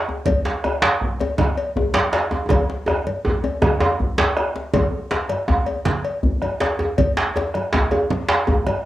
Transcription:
0.09 djembe tone
0.26 bombo low, cowbell, djembe slap, high conga, low conga, djembe bass
0.45 djembe slap, high conga
0.64 bombo rim, cowbell, djembe tone
0.82 cowbell, djembe slap, high conga
1.01 bombo low
1.19 bombo rim, cowbell, djembe slap, high conga, djembe tone
1.38 bombo rim, djembe slap, high conga, low conga, djembe bass
1.57 cowbell
1.76 bombo low, djembe tone
1.94 cowbell, djembe slap, high conga
2.13 bombo rim, cowbell, djembe slap
2.31 djembe tone
2.49 bombo low, cowbell, djembe slap, djembe tone, high conga, low conga, djembe bass
2.70 djembe slap
2.86 bombo rim, cowbell, djembe slap, djembe tone
2.88 djembe tone, high conga
3.07 cowbell, djembe slap, high conga
3.25 bombo low, djembe slap, djembe tone, high conga
3.44 cowbell, djembe slap, high conga, djembe tone
3.62 bombo rim, djembe tone, high conga, low conga, djembe bass
3.80 cowbell, djembe slap, djembe tone
3.99 bombo low, high conga, djembe bass
4.18 cowbell, djembe slap, high conga, djembe bass
4.37 bombo rim, cowbell, djembe slap
4.55 bombo rim, djembe slap
4.74 bombo low, cowbell, high conga, djembe tone, low conga, djembe bass
5.11 djembe slap, high conga
5.29 bombo rim, cowbell, high conga
5.48 bombo low, djembe tone, djembe bass
5.66 cowbell, djembe tone
5.85 djembe slap, high conga, low conga
6.04 cowbell, high conga
6.23 bombo low, high conga, djembe bass
6.42 bombo rim, cowbell, high conga
6.61 cowbell, djembe slap
6.79 djembe tone
6.98 bombo low, cowbell, high conga, low conga, djembe bass
7.17 djembe slap
7.36 cowbell, djembe slap, djembe tone, high conga
7.54 bombo rim, cowbell, high conga
7.73 bombo low, djembe slap, djembe bass
7.91 cowbell, djembe tone
8.11 djembe slap, high conga, low conga
8.29 cowbell, djembe slap
8.47 bombo low, djembe tone, high conga, djembe bass
8.67 bombo rim, cowbell, high conga

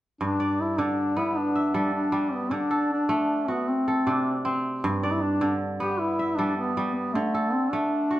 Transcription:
0.21 G2 D4
0.40 D5
0.61 E4
0.78 D3 D4
1.17 B3 E4
1.36 D4
1.56 E5
1.74 G3 D4 A4
1.94 D4
2.12 G3
2.34 B3
2.51 D3 D4
2.71 A4
2.92 D4
3.09 A3
3.48 B3 F#4
3.68 C4
3.88 A4
4.07 C3 D4
4.45 C4
4.84 G2
5.03 D4 D5
5.12 E4
5.23 D4
5.41 D3
5.80 B3 G4
5.99 E4
6.19 E5
6.37 G3 D4 A4
6.57 B3
6.77 G3
6.94 B3
7.13 D3 A3
7.34 A4
7.52 C4
7.71 A3 D4
8.11 F#4

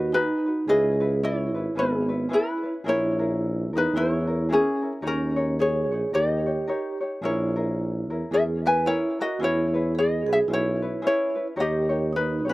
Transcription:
Already playing: D#2 D#4 F#4 B4 D#5
0.13 D#4 F#4 G#4 B4
0.46 D#4 F#4 B4
0.67 C#2 C#4 E4 G#4 B4 D#5
1.00 C#4 E4 G#4 B4
1.23 E4 C#5
1.54 G#1 C#4 E4 B4
1.75 G#1 B3 C#4 E4 G#4 B4
2.09 C#4 E4 B4
2.29 C#4 E4 G#4 B4
2.33 E4 B4
2.63 C#4 E4 B4
2.84 A#1 C#4 E4 G#4 A#4
2.89 C#5
3.19 C#4 E4 G#4 A#4
3.73 E2 C#4 D#4 E4 A#4
3.78 B4
3.93 E2 C#4 E4 G#4 A#4
3.97 C#5
4.27 C#4 E4 A#4
4.49 C#4 E4 G#4 A#4
4.53 G#4
4.82 C#4 E4 A#4
5.02 D#2 C#4 D#4 G#4 A#4 C#5
5.07 C#4 A#4
5.36 D#4 G#4 A#4 C#5
5.59 G#4 C#5
5.91 A#1 D#4 G#4 C#5
6.12 D#2 D#4 G4 A#4 C#5 D#5
6.46 D#4 G4 C#5
6.67 D#4 G4 A#4 C#5
7.01 D#4 G4 C#5
7.21 A#1 C#4 E4 G#4 A#4 C#5
7.56 C#4 E4 G#4 A#4
8.09 E2 C#4 E4 A#4
8.31 E2 C#4 E4 G#4 A#4 E5
8.65 C#4 E4 A#4 B4 G#5
8.85 C#4 E4 G#4 A#4 C#5
9.19 C#4 E4 F#4 A#4 D#5
9.39 E2 C#4 E4 G#4 B4
9.44 C#5
9.74 C#4 E4 G#4 B4
9.95 G#4 D#5
9.99 G#4
10.27 B1 C#4 E4 G#4 B4
10.33 G#4 E5
10.48 B1 C#4 E4 G#4 B4
10.53 E4 C#5
10.82 C#4 E4 B4
11.02 C#4 E4 G#4 B4
11.07 E4 C#5
11.35 C#4 E4 B4
11.56 D#2 D#4 G4 A#4 C#5
11.60 G4 D#5
11.89 D#4 G4 A#4 C#5
12.13 D#4 B4
12.45 A#1 C#4 D#4 G4 C#5
12.49 A#4

